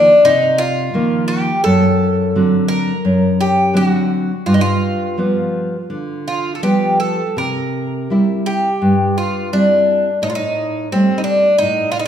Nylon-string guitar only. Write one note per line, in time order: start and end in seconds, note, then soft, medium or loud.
0.00 0.11 D#3 soft
0.00 0.11 F3 soft
0.00 0.10 A#3 soft
0.25 0.92 C3 medium
0.94 1.49 D#3 medium
0.94 1.49 F3 soft
0.94 1.50 A#3 medium
1.65 2.33 F#2 medium
2.36 2.91 D3 soft
2.36 2.91 F#3 soft
2.36 2.92 C4 soft
3.05 3.73 F#2 medium
3.73 4.31 D3 medium
3.73 4.31 F#3 soft
3.73 4.31 C4 medium
4.46 5.15 G2 medium
5.18 5.75 F3 soft
5.18 5.75 G3 soft
5.18 5.75 B3 soft
5.90 6.60 D3 medium
6.63 7.21 F3 soft
6.63 7.21 G3 soft
6.63 7.22 B3 soft
7.37 8.07 C3 medium
8.10 8.68 G3 soft
8.10 8.68 C4 soft
8.10 8.69 E4 soft
8.82 9.50 G2 medium
9.53 10.08 G3 soft
9.53 10.09 C4 soft
9.53 10.08 E4 soft
10.22 10.89 A2 medium
10.93 11.47 G3 soft
10.93 11.47 A3 soft
10.93 11.48 C4 soft
11.61 12.08 A2 medium